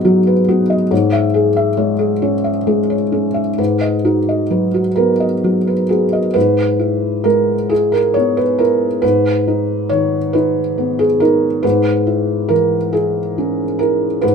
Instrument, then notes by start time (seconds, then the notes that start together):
felt piano
Already playing: G#2 F#3 B3 D#4 F#4 B4 D#5
0.05 F#3 F#4
0.27 B4
0.48 B3 F#4
0.70 D#5
0.91 G#2 C#5
1.13 E5
1.34 G#4
1.56 E5
1.77 G#3 C#5
1.99 G#4
2.22 C#4 C#5
2.44 E5
2.67 G#3 G#4
2.90 C#5
3.12 C#4 G#4
3.34 E5
3.58 G#2 B4
3.81 D#5
4.05 D#4 F#4
4.29 D#5
4.50 F#3 B4
4.74 F#4
4.96 B3 A#4 B4
5.20 D#5
5.44 F#3 F#4
5.67 B4
5.89 B3 F#4 G#4
6.13 D#5
6.34 G#2 B4
6.79 E4
7.24 G#3 A#4
7.69 E4 G#4
7.92 A#4
8.14 B3 C#5
8.37 B4
8.58 E4 A#4
9.02 G#2 B4
9.48 D#4
9.89 D#3 C#5
10.33 D#4 B4
10.78 B3
10.99 G#4
11.20 D#4 A#4
11.63 G#2 B4
12.07 E4
12.49 E3 A#4
12.93 E4 G#4
13.38 C#4
13.79 E4 A#4
14.21 G#2 B4